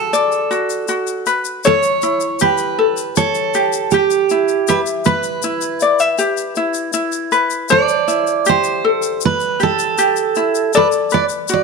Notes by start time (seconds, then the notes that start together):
Already playing: F#4 A4 B4
0.13 D5, shaker
0.32 shaker
0.51 F#4, shaker
0.70 shaker
0.88 F#4, shaker
1.07 shaker
1.26 B4, shaker
1.45 shaker
1.64 A4 C#5, shaker
1.83 shaker
2.02 E4, shaker
2.20 shaker
2.39 G4 B4, shaker
2.58 shaker
2.79 A4
2.97 shaker
3.16 A4 C#5, shaker
3.35 shaker
3.54 G4, shaker
3.73 shaker
3.91 G4, shaker
4.10 shaker
4.30 E4, shaker
4.48 shaker
4.67 G4 B4 E5, shaker
4.86 shaker
5.05 B4, shaker
5.23 shaker
5.42 E4, shaker
5.61 shaker
5.80 D5, shaker
5.99 E5, shaker
6.18 G4, shaker
6.37 shaker
6.55 E4, shaker
6.74 shaker
6.93 E4, shaker
7.12 shaker
7.32 B4, shaker
7.50 shaker
7.69 A4 C5 D5, shaker
7.89 shaker
8.08 E4, shaker
8.27 shaker
8.45 G4 C5, shaker
8.64 shaker
8.85 A4
9.02 shaker
9.21 shaker
9.26 B4
9.40 shaker
9.60 G4 A4, shaker
9.79 shaker
9.98 G4, shaker
10.16 shaker
10.35 E4, shaker
10.55 shaker
10.73 A4 B4 D5, shaker
10.92 shaker
11.10 B4 D5, shaker
11.29 shaker
11.48 F#4, shaker
11.53 D5